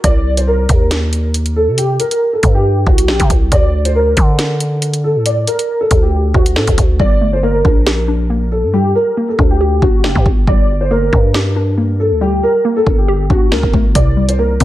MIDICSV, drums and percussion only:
0, 0, Header, 1, 2, 480
1, 0, Start_track
1, 0, Key_signature, -2, "minor"
1, 0, Tempo, 434783
1, 43, Time_signature, 4, 2, 24, 8
1, 16166, End_track
2, 0, Start_track
2, 0, Title_t, "Drums"
2, 43, Note_on_c, 9, 36, 113
2, 43, Note_on_c, 9, 42, 87
2, 154, Note_off_c, 9, 36, 0
2, 154, Note_off_c, 9, 42, 0
2, 413, Note_on_c, 9, 42, 73
2, 523, Note_off_c, 9, 42, 0
2, 762, Note_on_c, 9, 42, 72
2, 764, Note_on_c, 9, 36, 96
2, 873, Note_off_c, 9, 42, 0
2, 874, Note_off_c, 9, 36, 0
2, 1004, Note_on_c, 9, 38, 119
2, 1005, Note_on_c, 9, 42, 83
2, 1114, Note_off_c, 9, 38, 0
2, 1115, Note_off_c, 9, 42, 0
2, 1245, Note_on_c, 9, 42, 81
2, 1355, Note_off_c, 9, 42, 0
2, 1483, Note_on_c, 9, 42, 84
2, 1593, Note_off_c, 9, 42, 0
2, 1609, Note_on_c, 9, 42, 69
2, 1719, Note_off_c, 9, 42, 0
2, 1963, Note_on_c, 9, 42, 89
2, 2074, Note_off_c, 9, 42, 0
2, 2204, Note_on_c, 9, 42, 80
2, 2314, Note_off_c, 9, 42, 0
2, 2332, Note_on_c, 9, 42, 65
2, 2443, Note_off_c, 9, 42, 0
2, 2682, Note_on_c, 9, 42, 71
2, 2684, Note_on_c, 9, 36, 98
2, 2793, Note_off_c, 9, 42, 0
2, 2795, Note_off_c, 9, 36, 0
2, 3164, Note_on_c, 9, 36, 100
2, 3274, Note_off_c, 9, 36, 0
2, 3292, Note_on_c, 9, 42, 91
2, 3402, Note_off_c, 9, 42, 0
2, 3404, Note_on_c, 9, 38, 115
2, 3514, Note_off_c, 9, 38, 0
2, 3529, Note_on_c, 9, 42, 79
2, 3530, Note_on_c, 9, 36, 93
2, 3639, Note_off_c, 9, 42, 0
2, 3641, Note_off_c, 9, 36, 0
2, 3644, Note_on_c, 9, 36, 92
2, 3644, Note_on_c, 9, 42, 72
2, 3754, Note_off_c, 9, 42, 0
2, 3755, Note_off_c, 9, 36, 0
2, 3883, Note_on_c, 9, 42, 85
2, 3884, Note_on_c, 9, 36, 114
2, 3994, Note_off_c, 9, 36, 0
2, 3994, Note_off_c, 9, 42, 0
2, 4252, Note_on_c, 9, 42, 73
2, 4363, Note_off_c, 9, 42, 0
2, 4602, Note_on_c, 9, 42, 75
2, 4604, Note_on_c, 9, 36, 97
2, 4712, Note_off_c, 9, 42, 0
2, 4714, Note_off_c, 9, 36, 0
2, 4843, Note_on_c, 9, 38, 121
2, 4844, Note_on_c, 9, 42, 84
2, 4953, Note_off_c, 9, 38, 0
2, 4954, Note_off_c, 9, 42, 0
2, 5084, Note_on_c, 9, 42, 86
2, 5194, Note_off_c, 9, 42, 0
2, 5322, Note_on_c, 9, 42, 85
2, 5432, Note_off_c, 9, 42, 0
2, 5448, Note_on_c, 9, 42, 70
2, 5559, Note_off_c, 9, 42, 0
2, 5803, Note_on_c, 9, 42, 90
2, 5914, Note_off_c, 9, 42, 0
2, 6044, Note_on_c, 9, 42, 83
2, 6154, Note_off_c, 9, 42, 0
2, 6172, Note_on_c, 9, 42, 68
2, 6283, Note_off_c, 9, 42, 0
2, 6522, Note_on_c, 9, 42, 73
2, 6524, Note_on_c, 9, 36, 98
2, 6632, Note_off_c, 9, 42, 0
2, 6634, Note_off_c, 9, 36, 0
2, 7003, Note_on_c, 9, 36, 96
2, 7114, Note_off_c, 9, 36, 0
2, 7131, Note_on_c, 9, 42, 89
2, 7242, Note_off_c, 9, 42, 0
2, 7244, Note_on_c, 9, 38, 109
2, 7354, Note_off_c, 9, 38, 0
2, 7369, Note_on_c, 9, 42, 76
2, 7370, Note_on_c, 9, 36, 91
2, 7479, Note_off_c, 9, 42, 0
2, 7480, Note_off_c, 9, 36, 0
2, 7484, Note_on_c, 9, 36, 94
2, 7484, Note_on_c, 9, 42, 74
2, 7594, Note_off_c, 9, 36, 0
2, 7594, Note_off_c, 9, 42, 0
2, 7723, Note_on_c, 9, 36, 117
2, 7834, Note_off_c, 9, 36, 0
2, 8444, Note_on_c, 9, 36, 98
2, 8554, Note_off_c, 9, 36, 0
2, 8683, Note_on_c, 9, 38, 121
2, 8794, Note_off_c, 9, 38, 0
2, 10364, Note_on_c, 9, 36, 97
2, 10474, Note_off_c, 9, 36, 0
2, 10843, Note_on_c, 9, 36, 99
2, 10954, Note_off_c, 9, 36, 0
2, 11084, Note_on_c, 9, 38, 114
2, 11194, Note_off_c, 9, 38, 0
2, 11210, Note_on_c, 9, 36, 91
2, 11320, Note_off_c, 9, 36, 0
2, 11324, Note_on_c, 9, 36, 94
2, 11435, Note_off_c, 9, 36, 0
2, 11564, Note_on_c, 9, 36, 117
2, 11674, Note_off_c, 9, 36, 0
2, 12284, Note_on_c, 9, 36, 97
2, 12395, Note_off_c, 9, 36, 0
2, 12524, Note_on_c, 9, 38, 120
2, 12634, Note_off_c, 9, 38, 0
2, 14204, Note_on_c, 9, 36, 97
2, 14314, Note_off_c, 9, 36, 0
2, 14683, Note_on_c, 9, 36, 96
2, 14794, Note_off_c, 9, 36, 0
2, 14924, Note_on_c, 9, 38, 111
2, 15034, Note_off_c, 9, 38, 0
2, 15050, Note_on_c, 9, 36, 89
2, 15160, Note_off_c, 9, 36, 0
2, 15164, Note_on_c, 9, 36, 95
2, 15274, Note_off_c, 9, 36, 0
2, 15403, Note_on_c, 9, 36, 115
2, 15403, Note_on_c, 9, 42, 87
2, 15513, Note_off_c, 9, 42, 0
2, 15514, Note_off_c, 9, 36, 0
2, 15772, Note_on_c, 9, 42, 72
2, 15882, Note_off_c, 9, 42, 0
2, 16122, Note_on_c, 9, 42, 72
2, 16124, Note_on_c, 9, 36, 99
2, 16166, Note_off_c, 9, 36, 0
2, 16166, Note_off_c, 9, 42, 0
2, 16166, End_track
0, 0, End_of_file